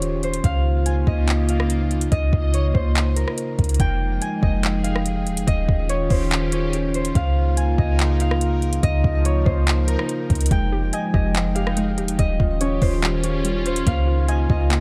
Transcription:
Already playing: 808-style bass D#1, analog synth pad D#3 C#4 F4 G4, synth texture C#4 F4 G4, harp C#5 D#5
0.02 closed hi-hat
0.23 harp C5, closed hi-hat
0.34 closed hi-hat
0.44 808-style bass C#2, analog synth pad C#3 A#3 D#4, synth texture A#3 D#5, harp F5, kick, closed hi-hat
0.86 harp G#5, closed hi-hat
1.07 808-style bass C#2, harp D#5, kick
1.28 clap, closed hi-hat
1.49 harp F5, closed hi-hat
1.60 cross-stick
1.70 closed hi-hat
1.91 closed hi-hat
2.01 closed hi-hat
2.12 808-style bass C#2, harp D#5, kick, closed hi-hat
2.33 808-style bass C#2, kick
2.54 harp C#5, closed hi-hat
2.74 808-style bass C#2, harp C5, kick
2.95 clap, closed hi-hat
3.16 harp A#4, closed hi-hat
3.28 cross-stick
3.38 closed hi-hat
3.59 808-style bass C#2, kick, closed hi-hat
3.64 closed hi-hat
3.69 closed hi-hat
3.74 closed hi-hat
3.80 808-style bass F1, analog synth pad F3 G#3 D#4 G5, synth texture D#4 G4 G#4, harp G5, kick, closed hi-hat
4.22 harp G#5, closed hi-hat
4.42 808-style bass F1, harp D#5, kick
4.63 clap, closed hi-hat
4.84 harp F5, closed hi-hat
4.96 cross-stick
5.06 closed hi-hat
5.27 808-style bass D#1, closed hi-hat
5.37 808-style bass F1, closed hi-hat
5.47 808-style bass D#1, analog synth pad D#3 C#4 F4, synth texture C#4 F4, harp D#5, kick, closed hi-hat
5.69 808-style bass D#1, kick
5.89 harp C#5, closed hi-hat
6.10 808-style bass D#1, harp C5, kick, open hi-hat
6.31 clap, closed hi-hat
6.52 harp C#5, closed hi-hat
6.73 closed hi-hat
6.94 harp C5, closed hi-hat
7.05 closed hi-hat
7.15 808-style bass C#2, analog synth pad C#3 A#3 D#4 F4, synth texture F3 D#4 A#4, harp F5, kick, closed hi-hat
7.57 harp G#5, closed hi-hat
7.78 808-style bass C#2, harp D#5, kick
7.99 clap, closed hi-hat
8.20 harp F5, closed hi-hat
8.31 cross-stick
8.41 closed hi-hat
8.62 closed hi-hat
8.73 closed hi-hat
8.83 808-style bass C#2, harp D#5, kick, closed hi-hat
9.04 808-style bass C#2, kick
9.25 harp C#5, closed hi-hat
9.46 808-style bass C#2, harp C5, kick
9.67 clap, closed hi-hat
9.88 harp A#4, closed hi-hat
9.99 cross-stick
10.09 closed hi-hat
10.30 808-style bass C#2, kick, closed hi-hat
10.35 closed hi-hat
10.41 closed hi-hat
10.46 closed hi-hat
10.51 808-style bass F1, analog synth pad F3 G#3 G5, synth pluck G#3, synth texture G4 G#4, harp G5, kick, closed hi-hat
10.72 synth pluck G4
10.93 synth pluck D#5, harp G#5, closed hi-hat
11.14 808-style bass F1, synth pluck G4, harp D#5, kick
11.35 synth pluck G#3, clap, closed hi-hat
11.55 synth pluck G4, harp F5, closed hi-hat
11.67 cross-stick
11.77 synth pluck G#3, closed hi-hat
11.98 808-style bass D#1, synth pluck G4, closed hi-hat
12.08 808-style bass F1, closed hi-hat
12.19 808-style bass D#1, analog synth pad D#3 C#4 F4, synth pluck G3, synth texture C#4 F4, harp D#5, kick, closed hi-hat
12.40 808-style bass D#1, synth pluck F4, kick
12.61 synth pluck C#4, harp C#5, closed hi-hat
12.82 808-style bass D#1, synth pluck F4, harp C5, kick, open hi-hat
13.02 synth pluck G3, clap, closed hi-hat
13.24 synth pluck F4, harp C#5, closed hi-hat
13.44 synth pluck G3, closed hi-hat
13.66 synth pluck F4, harp C5, closed hi-hat
13.76 closed hi-hat
13.87 808-style bass C#2, analog synth pad C#3 A#3 D#4, synth texture A#3 F4 D#5, synth pluck A#3, harp F5, kick, closed hi-hat
14.07 synth pluck F4
14.28 synth pluck D#5, harp G#5, closed hi-hat
14.50 808-style bass C#2, synth pluck F4, harp D#5, kick
14.70 synth pluck A#3, clap, closed hi-hat

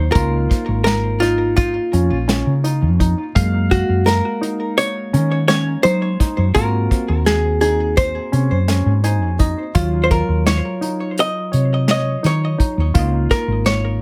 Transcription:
Already playing: fretless electric bass D#2, tine electric piano F#3 D#4, hollow-body jazz guitar C5
0.12 fretless electric bass C#2, tine electric piano A#3 D#4 F4, grand piano F4, hollow-body jazz guitar A#4, kick, closed hi-hat
0.51 kick, snare, closed hi-hat
0.68 fretless electric bass G#1
0.84 hollow-body jazz guitar A#4, snare, closed hi-hat
1.20 grand piano D#4, hollow-body jazz guitar F4, snare, closed hi-hat
1.56 hollow-body jazz guitar F4, kick, closed hi-hat
1.93 fretless electric bass F2, grand piano C#4, closed hi-hat
2.11 fretless electric bass A#1
2.28 grand piano C#4, snare, closed hi-hat
2.47 fretless electric bass C#3
2.64 grand piano D#4, closed hi-hat
2.82 fretless electric bass F2
3.00 grand piano D#4, kick, closed hi-hat
3.35 fretless electric bass F#2, tine electric piano G#3 A#3 F5, grand piano F5, kick, closed hi-hat
3.71 hollow-body jazz guitar F#4, kick, closed hi-hat
3.89 fretless electric bass F#2
4.06 hollow-body jazz guitar A#4, snare, closed hi-hat
4.41 grand piano D#4, closed hi-hat
4.78 hollow-body jazz guitar C#5, closed hi-hat
5.13 fretless electric bass D#3, grand piano C#4, closed hi-hat
5.48 grand piano C#4, hollow-body jazz guitar C#5, snare, closed hi-hat
5.83 fretless electric bass F#3, grand piano D#4, hollow-body jazz guitar C5, closed hi-hat
6.20 grand piano D#4, kick, snare, closed hi-hat
6.38 fretless electric bass F#2
6.55 fretless electric bass G#2, tine electric piano A#3 C4 F#4, grand piano F4, hollow-body jazz guitar A#4, kick, closed hi-hat
6.91 kick, snare, closed hi-hat
7.09 fretless electric bass D#2
7.26 hollow-body jazz guitar G#4, snare, closed hi-hat
7.61 grand piano D#4, hollow-body jazz guitar G#4, closed hi-hat
7.97 hollow-body jazz guitar C5, kick, snare, closed hi-hat
8.32 fretless electric bass C3, grand piano C#4, closed hi-hat
8.51 fretless electric bass F#2
8.68 grand piano C#4, snare, closed hi-hat
8.86 fretless electric bass G#2
9.04 grand piano D#4, tine electric piano G#5, closed hi-hat
9.22 fretless electric bass F2
9.39 grand piano D#4, tine electric piano D#5, kick, closed hi-hat
9.75 fretless electric bass D#2, tine electric piano F#3 F4 C#5, grand piano F4, kick, closed hi-hat
10.04 hollow-body jazz guitar C5
10.11 hollow-body jazz guitar A#4, kick, closed hi-hat
10.29 fretless electric bass D#2
10.47 hollow-body jazz guitar C#5, snare, closed hi-hat
10.81 grand piano D#4, closed hi-hat
11.18 hollow-body jazz guitar D#5, closed hi-hat
11.52 fretless electric bass C3, grand piano C#5, closed hi-hat
11.88 grand piano C#5, hollow-body jazz guitar D#5, snare, closed hi-hat
12.23 fretless electric bass D#3, grand piano D#4, hollow-body jazz guitar C#5, snare, closed hi-hat
12.58 grand piano D#4, kick, closed hi-hat
12.78 fretless electric bass D#2
12.94 fretless electric bass C#2, tine electric piano A#3 D#4 F4, grand piano F4, kick, closed hi-hat
13.31 hollow-body jazz guitar A#4, kick, snare, closed hi-hat
13.48 fretless electric bass G#1
13.66 hollow-body jazz guitar C#5, snare, closed hi-hat

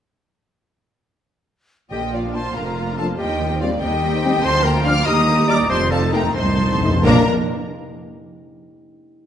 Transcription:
1.90 double bass section A#1, timpani A#2, cello section A#2, viola section D3 F4, clarinet G4, violin section D#5 G5, flute G5
2.02 viola section F3
2.13 viola section A#3, clarinet F4, violin section D5 F5, flute F5
2.24 viola section D4
2.34 french horn section F3 D4, viola section A#3, clarinet C5, violin section A5 C6, flute C6
2.45 viola section F3
2.56 double bass section F1, cello section F2, viola section D3, clarinet A#4, violin section F5 A#5, flute A#5
2.67 viola section F3
2.78 viola section A#3
2.88 viola section D4
2.97 french horn section F3 D4, viola section A#3, clarinet A4, violin section F5 A5, flute A5
3.09 viola section F3
3.17 cello section D#2, double bass section D#2, viola section C3, clarinet G4, violin section D#5 G5, flute G5
3.30 viola section D#3
3.40 viola section G3
3.51 viola section C4
3.60 viola section G3, french horn section G3 C4, clarinet F4, violin section D5 F5, flute F5
3.72 viola section D#3
3.81 cello section D#2, double bass section D#2, viola section C3 D#4, clarinet G4, violin section D#5 G5, flute G5
3.92 viola section D#3
4.03 viola section G3
4.14 viola section C4
4.24 viola section G3, french horn section G3 C4
4.35 viola section D#3
4.43 double bass section D2, cello section D2, viola section D3 F4, clarinet C5, violin section A5 C6, flute C6
4.55 viola section F3
4.63 viola section A#3, clarinet A#4, violin section G5 A#5, flute A#5
4.76 viola section F3
4.84 viola section D3, french horn section F3 D4, clarinet F5, violin section D6 F6, flute F6
4.98 viola section F3
5.06 cello section D#2, double bass section D#2, viola section D#3 G4, clarinet D#5, violin section A#5 D#6, flute F6
5.13 flute D#6
5.18 viola section G3
5.29 viola section A#3
5.40 viola section G3
5.47 viola section D#3, french horn section G3 D#4, clarinet D5, violin section A#5 D6, flute F6
5.55 flute D6
5.60 viola section G3
5.69 double bass section F1, cello section F2, timpani F2, viola section C3 D#4, clarinet C5, violin section A5 C6, flute D6
5.75 flute C6
5.82 timpani F2, viola section D#3
5.90 timpani F2, viola section F3, clarinet A4, violin section F5 A5, flute A5
6.01 timpani F2, viola section A3
6.08 timpani F2
6.13 timpani F2, viola section F3, french horn section A3 D#4, clarinet A#4, violin section G5 A#5, flute A#5
6.23 timpani F2, viola section D#3
6.32 timpani F2, clarinet C5, violin section A5
6.36 double bass section C2, cello section C2, timpani F2, viola section C3, violin section C6, flute C6
6.48 timpani F2, viola section D#3
6.56 timpani F2, viola section F3
6.63 timpani F2
6.71 timpani F2, viola section A3
6.80 timpani F2, viola section F3, french horn section A3 D#4
6.88 timpani F2
6.94 timpani F2, viola section D#3
7.04 double bass section A#1, timpani A#2, cello section A#2, viola section A#3 D4, french horn section A#3 D4, violin section A#4 A#5, clarinet A#4, flute F5

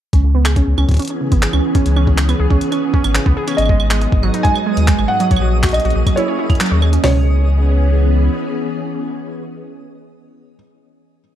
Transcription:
0.13 sub bass C#2, string machine E3 B3 C#4 G#4, synth pluck C#4, kick, closed hi-hat
0.24 synth pluck C#3
0.35 synth pluck B3
0.45 synth pluck G#4, clap, closed hi-hat, claves
0.56 synth pluck C#4, kick, closed hi-hat
0.67 sub bass C#2
0.78 sub bass C#2, synth pluck C#4, claves
0.89 kick, closed hi-hat
0.91 kick, closed hi-hat
0.94 kick, closed hi-hat
0.97 synth pluck C#4, kick, closed hi-hat
0.99 closed hi-hat
1.02 closed hi-hat
1.05 closed hi-hat
1.08 synth pluck C#4, closed hi-hat
1.21 synth pluck C#3
1.32 sub bass G#1, synth pluck B3, kick, closed hi-hat
1.42 synth pluck G#4, clap, closed hi-hat
1.53 sub bass C#2, synth pluck C#4, claves
1.75 synth pluck C#4, kick, closed hi-hat
1.86 sub bass C#2, closed hi-hat
1.96 synth pluck C#4, claves
2.07 synth pluck C#4, kick
2.18 synth pluck C#3, clap, closed hi-hat
2.29 synth pluck B3, closed hi-hat, claves
2.40 sub bass C#2, synth pluck G#4
2.50 sub bass C#2, synth pluck C#4, kick
2.61 closed hi-hat
2.72 synth pluck C#4, closed hi-hat, claves
2.93 synth pluck C#4, kick
3.04 sub bass G#1, synth pluck C#4, closed hi-hat, claves
3.15 synth pluck C#3, clap, closed hi-hat
3.26 sub bass C#2, synth pluck B3, kick
3.37 synth pluck G#4
3.47 synth pluck C#4, closed hi-hat, claves
3.51 claves
3.55 sub bass G#1, felt piano D#5, closed hi-hat, claves
3.58 string machine F#3 D#4, synth texture D#5, claves
3.62 claves
3.65 synth pluck G#3, kick, claves
3.80 claves
3.91 synth pluck G#3, clap, closed hi-hat
4.01 synth pluck G#3, closed hi-hat
4.12 sub bass G#1, synth pluck G#2, kick
4.23 sub bass G#1, synth pluck F#3, claves
4.34 synth pluck D#4, closed hi-hat
4.43 synth pluck G#3, felt piano G#5, kick, closed hi-hat
4.55 claves
4.66 synth pluck G#3
4.77 sub bass D#2, closed hi-hat
4.88 synth pluck G#3, kick, clap, closed hi-hat
4.99 sub bass G#1, synth pluck G#3, claves
5.08 synth pluck G#2, felt piano F#5
5.20 synth pluck F#3, closed hi-hat
5.31 sub bass A#1, string machine A#3 C#4 G#4, synth pluck C#5, kick, closed hi-hat
5.36 claves
5.42 synth pluck F#4
5.63 synth pluck F#4, kick, clap, closed hi-hat
5.66 closed hi-hat
5.69 closed hi-hat
5.72 felt piano D#5, closed hi-hat
5.74 closed hi-hat, claves
5.80 closed hi-hat
5.85 sub bass A#1, synth pluck F#4, closed hi-hat
5.90 closed hi-hat
5.96 sub bass A#1, synth pluck F#4
6.06 synth pluck F#3, kick, closed hi-hat, claves
6.16 synth pluck E4, felt piano C#5, closed hi-hat
6.28 synth pluck C#5
6.39 synth pluck E4
6.50 kick, closed hi-hat, claves
6.55 closed hi-hat
6.60 synth pluck F#3, clap, closed hi-hat
6.66 closed hi-hat
6.71 sub bass D#2, synth pluck C#5
6.82 synth pluck G#4, claves
6.93 synth pluck C#4, closed hi-hat
7.04 sub bass C#2, string machine E3 B3 C#4 G#4, synth pluck C#4, felt piano C#5, snare, floor tom, open hi-hat

